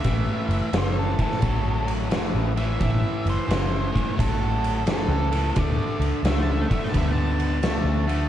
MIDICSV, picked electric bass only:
0, 0, Header, 1, 2, 480
1, 0, Start_track
1, 0, Key_signature, 3, "major"
1, 0, Tempo, 689655
1, 35, Time_signature, 4, 2, 24, 8
1, 5768, End_track
2, 0, Start_track
2, 0, Title_t, "Picked electric bass"
2, 0, Program_c, 0, 34
2, 32, Note_on_c, 0, 33, 93
2, 174, Note_off_c, 0, 33, 0
2, 338, Note_on_c, 0, 30, 87
2, 417, Note_off_c, 0, 30, 0
2, 509, Note_on_c, 0, 30, 82
2, 792, Note_off_c, 0, 30, 0
2, 993, Note_on_c, 0, 33, 84
2, 1477, Note_off_c, 0, 33, 0
2, 1477, Note_on_c, 0, 30, 87
2, 1616, Note_off_c, 0, 30, 0
2, 1632, Note_on_c, 0, 33, 99
2, 1919, Note_off_c, 0, 33, 0
2, 1951, Note_on_c, 0, 33, 100
2, 2093, Note_off_c, 0, 33, 0
2, 2266, Note_on_c, 0, 30, 78
2, 2341, Note_off_c, 0, 30, 0
2, 2427, Note_on_c, 0, 30, 92
2, 2711, Note_off_c, 0, 30, 0
2, 2917, Note_on_c, 0, 33, 88
2, 3391, Note_off_c, 0, 33, 0
2, 3391, Note_on_c, 0, 30, 86
2, 3532, Note_off_c, 0, 30, 0
2, 3538, Note_on_c, 0, 37, 95
2, 3832, Note_off_c, 0, 37, 0
2, 3871, Note_on_c, 0, 38, 92
2, 4013, Note_off_c, 0, 38, 0
2, 4173, Note_on_c, 0, 37, 86
2, 4253, Note_off_c, 0, 37, 0
2, 4334, Note_on_c, 0, 37, 84
2, 4624, Note_off_c, 0, 37, 0
2, 4829, Note_on_c, 0, 38, 97
2, 5302, Note_off_c, 0, 38, 0
2, 5302, Note_on_c, 0, 37, 92
2, 5448, Note_off_c, 0, 37, 0
2, 5456, Note_on_c, 0, 38, 93
2, 5752, Note_off_c, 0, 38, 0
2, 5768, End_track
0, 0, End_of_file